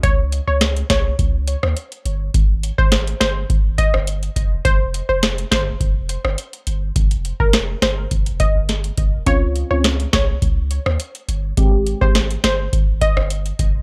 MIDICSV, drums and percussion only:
0, 0, Header, 1, 2, 480
1, 0, Start_track
1, 0, Tempo, 576923
1, 30, Time_signature, 4, 2, 24, 8
1, 11502, End_track
2, 0, Start_track
2, 0, Title_t, "Drums"
2, 29, Note_on_c, 9, 36, 121
2, 29, Note_on_c, 9, 42, 86
2, 112, Note_off_c, 9, 36, 0
2, 112, Note_off_c, 9, 42, 0
2, 269, Note_on_c, 9, 42, 74
2, 353, Note_off_c, 9, 42, 0
2, 507, Note_on_c, 9, 42, 91
2, 508, Note_on_c, 9, 38, 115
2, 512, Note_on_c, 9, 37, 94
2, 591, Note_off_c, 9, 38, 0
2, 591, Note_off_c, 9, 42, 0
2, 595, Note_off_c, 9, 37, 0
2, 637, Note_on_c, 9, 42, 51
2, 720, Note_off_c, 9, 42, 0
2, 748, Note_on_c, 9, 38, 112
2, 749, Note_on_c, 9, 36, 87
2, 749, Note_on_c, 9, 42, 82
2, 752, Note_on_c, 9, 37, 89
2, 831, Note_off_c, 9, 38, 0
2, 832, Note_off_c, 9, 36, 0
2, 832, Note_off_c, 9, 42, 0
2, 835, Note_off_c, 9, 37, 0
2, 989, Note_on_c, 9, 36, 91
2, 990, Note_on_c, 9, 42, 71
2, 1073, Note_off_c, 9, 36, 0
2, 1073, Note_off_c, 9, 42, 0
2, 1227, Note_on_c, 9, 42, 86
2, 1310, Note_off_c, 9, 42, 0
2, 1357, Note_on_c, 9, 37, 98
2, 1440, Note_off_c, 9, 37, 0
2, 1469, Note_on_c, 9, 42, 83
2, 1552, Note_off_c, 9, 42, 0
2, 1596, Note_on_c, 9, 42, 45
2, 1680, Note_off_c, 9, 42, 0
2, 1710, Note_on_c, 9, 42, 78
2, 1793, Note_off_c, 9, 42, 0
2, 1950, Note_on_c, 9, 36, 120
2, 1950, Note_on_c, 9, 42, 89
2, 2033, Note_off_c, 9, 36, 0
2, 2033, Note_off_c, 9, 42, 0
2, 2192, Note_on_c, 9, 42, 76
2, 2275, Note_off_c, 9, 42, 0
2, 2317, Note_on_c, 9, 36, 101
2, 2400, Note_off_c, 9, 36, 0
2, 2427, Note_on_c, 9, 42, 86
2, 2428, Note_on_c, 9, 38, 123
2, 2432, Note_on_c, 9, 37, 97
2, 2510, Note_off_c, 9, 42, 0
2, 2511, Note_off_c, 9, 38, 0
2, 2515, Note_off_c, 9, 37, 0
2, 2558, Note_on_c, 9, 42, 54
2, 2641, Note_off_c, 9, 42, 0
2, 2669, Note_on_c, 9, 38, 114
2, 2671, Note_on_c, 9, 42, 82
2, 2673, Note_on_c, 9, 37, 89
2, 2752, Note_off_c, 9, 38, 0
2, 2754, Note_off_c, 9, 42, 0
2, 2756, Note_off_c, 9, 37, 0
2, 2910, Note_on_c, 9, 36, 94
2, 2911, Note_on_c, 9, 42, 71
2, 2993, Note_off_c, 9, 36, 0
2, 2994, Note_off_c, 9, 42, 0
2, 3148, Note_on_c, 9, 36, 98
2, 3148, Note_on_c, 9, 42, 84
2, 3231, Note_off_c, 9, 36, 0
2, 3231, Note_off_c, 9, 42, 0
2, 3277, Note_on_c, 9, 37, 99
2, 3360, Note_off_c, 9, 37, 0
2, 3389, Note_on_c, 9, 42, 84
2, 3472, Note_off_c, 9, 42, 0
2, 3517, Note_on_c, 9, 42, 47
2, 3600, Note_off_c, 9, 42, 0
2, 3629, Note_on_c, 9, 36, 83
2, 3630, Note_on_c, 9, 42, 77
2, 3713, Note_off_c, 9, 36, 0
2, 3713, Note_off_c, 9, 42, 0
2, 3869, Note_on_c, 9, 36, 118
2, 3870, Note_on_c, 9, 42, 84
2, 3953, Note_off_c, 9, 36, 0
2, 3953, Note_off_c, 9, 42, 0
2, 4112, Note_on_c, 9, 42, 73
2, 4195, Note_off_c, 9, 42, 0
2, 4350, Note_on_c, 9, 38, 116
2, 4350, Note_on_c, 9, 42, 88
2, 4354, Note_on_c, 9, 37, 91
2, 4433, Note_off_c, 9, 42, 0
2, 4434, Note_off_c, 9, 38, 0
2, 4438, Note_off_c, 9, 37, 0
2, 4479, Note_on_c, 9, 42, 53
2, 4562, Note_off_c, 9, 42, 0
2, 4590, Note_on_c, 9, 36, 89
2, 4590, Note_on_c, 9, 38, 114
2, 4591, Note_on_c, 9, 42, 80
2, 4594, Note_on_c, 9, 37, 87
2, 4673, Note_off_c, 9, 36, 0
2, 4673, Note_off_c, 9, 38, 0
2, 4675, Note_off_c, 9, 42, 0
2, 4677, Note_off_c, 9, 37, 0
2, 4830, Note_on_c, 9, 36, 90
2, 4831, Note_on_c, 9, 42, 71
2, 4913, Note_off_c, 9, 36, 0
2, 4914, Note_off_c, 9, 42, 0
2, 5068, Note_on_c, 9, 42, 88
2, 5152, Note_off_c, 9, 42, 0
2, 5197, Note_on_c, 9, 37, 100
2, 5280, Note_off_c, 9, 37, 0
2, 5308, Note_on_c, 9, 42, 85
2, 5392, Note_off_c, 9, 42, 0
2, 5435, Note_on_c, 9, 42, 46
2, 5518, Note_off_c, 9, 42, 0
2, 5548, Note_on_c, 9, 42, 81
2, 5631, Note_off_c, 9, 42, 0
2, 5789, Note_on_c, 9, 36, 123
2, 5789, Note_on_c, 9, 42, 88
2, 5872, Note_off_c, 9, 36, 0
2, 5872, Note_off_c, 9, 42, 0
2, 5916, Note_on_c, 9, 42, 57
2, 5999, Note_off_c, 9, 42, 0
2, 6031, Note_on_c, 9, 42, 70
2, 6114, Note_off_c, 9, 42, 0
2, 6157, Note_on_c, 9, 36, 100
2, 6240, Note_off_c, 9, 36, 0
2, 6268, Note_on_c, 9, 38, 117
2, 6268, Note_on_c, 9, 42, 90
2, 6272, Note_on_c, 9, 37, 98
2, 6351, Note_off_c, 9, 38, 0
2, 6351, Note_off_c, 9, 42, 0
2, 6355, Note_off_c, 9, 37, 0
2, 6508, Note_on_c, 9, 38, 110
2, 6509, Note_on_c, 9, 42, 78
2, 6512, Note_on_c, 9, 37, 94
2, 6591, Note_off_c, 9, 38, 0
2, 6593, Note_off_c, 9, 42, 0
2, 6595, Note_off_c, 9, 37, 0
2, 6749, Note_on_c, 9, 36, 90
2, 6749, Note_on_c, 9, 42, 71
2, 6832, Note_off_c, 9, 42, 0
2, 6833, Note_off_c, 9, 36, 0
2, 6875, Note_on_c, 9, 42, 56
2, 6958, Note_off_c, 9, 42, 0
2, 6987, Note_on_c, 9, 42, 80
2, 6988, Note_on_c, 9, 36, 102
2, 7070, Note_off_c, 9, 42, 0
2, 7071, Note_off_c, 9, 36, 0
2, 7228, Note_on_c, 9, 42, 79
2, 7231, Note_on_c, 9, 38, 65
2, 7311, Note_off_c, 9, 42, 0
2, 7314, Note_off_c, 9, 38, 0
2, 7356, Note_on_c, 9, 42, 48
2, 7439, Note_off_c, 9, 42, 0
2, 7467, Note_on_c, 9, 42, 81
2, 7469, Note_on_c, 9, 36, 89
2, 7550, Note_off_c, 9, 42, 0
2, 7552, Note_off_c, 9, 36, 0
2, 7708, Note_on_c, 9, 42, 86
2, 7709, Note_on_c, 9, 36, 119
2, 7792, Note_off_c, 9, 42, 0
2, 7793, Note_off_c, 9, 36, 0
2, 7950, Note_on_c, 9, 42, 74
2, 8034, Note_off_c, 9, 42, 0
2, 8189, Note_on_c, 9, 42, 91
2, 8190, Note_on_c, 9, 38, 119
2, 8194, Note_on_c, 9, 37, 94
2, 8272, Note_off_c, 9, 42, 0
2, 8273, Note_off_c, 9, 38, 0
2, 8277, Note_off_c, 9, 37, 0
2, 8318, Note_on_c, 9, 42, 52
2, 8401, Note_off_c, 9, 42, 0
2, 8429, Note_on_c, 9, 38, 117
2, 8430, Note_on_c, 9, 36, 90
2, 8431, Note_on_c, 9, 42, 80
2, 8433, Note_on_c, 9, 37, 92
2, 8512, Note_off_c, 9, 38, 0
2, 8513, Note_off_c, 9, 36, 0
2, 8514, Note_off_c, 9, 42, 0
2, 8516, Note_off_c, 9, 37, 0
2, 8670, Note_on_c, 9, 36, 88
2, 8671, Note_on_c, 9, 42, 70
2, 8753, Note_off_c, 9, 36, 0
2, 8754, Note_off_c, 9, 42, 0
2, 8908, Note_on_c, 9, 42, 85
2, 8991, Note_off_c, 9, 42, 0
2, 9037, Note_on_c, 9, 37, 102
2, 9120, Note_off_c, 9, 37, 0
2, 9149, Note_on_c, 9, 42, 82
2, 9232, Note_off_c, 9, 42, 0
2, 9276, Note_on_c, 9, 42, 47
2, 9359, Note_off_c, 9, 42, 0
2, 9390, Note_on_c, 9, 42, 77
2, 9473, Note_off_c, 9, 42, 0
2, 9629, Note_on_c, 9, 36, 120
2, 9629, Note_on_c, 9, 42, 83
2, 9712, Note_off_c, 9, 36, 0
2, 9712, Note_off_c, 9, 42, 0
2, 9872, Note_on_c, 9, 42, 74
2, 9955, Note_off_c, 9, 42, 0
2, 9997, Note_on_c, 9, 36, 103
2, 10080, Note_off_c, 9, 36, 0
2, 10109, Note_on_c, 9, 42, 88
2, 10110, Note_on_c, 9, 38, 119
2, 10114, Note_on_c, 9, 37, 89
2, 10192, Note_off_c, 9, 42, 0
2, 10193, Note_off_c, 9, 38, 0
2, 10197, Note_off_c, 9, 37, 0
2, 10238, Note_on_c, 9, 42, 52
2, 10321, Note_off_c, 9, 42, 0
2, 10349, Note_on_c, 9, 38, 107
2, 10350, Note_on_c, 9, 42, 82
2, 10352, Note_on_c, 9, 37, 91
2, 10432, Note_off_c, 9, 38, 0
2, 10433, Note_off_c, 9, 42, 0
2, 10436, Note_off_c, 9, 37, 0
2, 10590, Note_on_c, 9, 36, 96
2, 10591, Note_on_c, 9, 42, 73
2, 10673, Note_off_c, 9, 36, 0
2, 10674, Note_off_c, 9, 42, 0
2, 10828, Note_on_c, 9, 36, 98
2, 10828, Note_on_c, 9, 42, 83
2, 10911, Note_off_c, 9, 36, 0
2, 10912, Note_off_c, 9, 42, 0
2, 10956, Note_on_c, 9, 37, 100
2, 11040, Note_off_c, 9, 37, 0
2, 11069, Note_on_c, 9, 42, 83
2, 11152, Note_off_c, 9, 42, 0
2, 11196, Note_on_c, 9, 42, 45
2, 11279, Note_off_c, 9, 42, 0
2, 11308, Note_on_c, 9, 42, 80
2, 11309, Note_on_c, 9, 36, 86
2, 11392, Note_off_c, 9, 36, 0
2, 11392, Note_off_c, 9, 42, 0
2, 11502, End_track
0, 0, End_of_file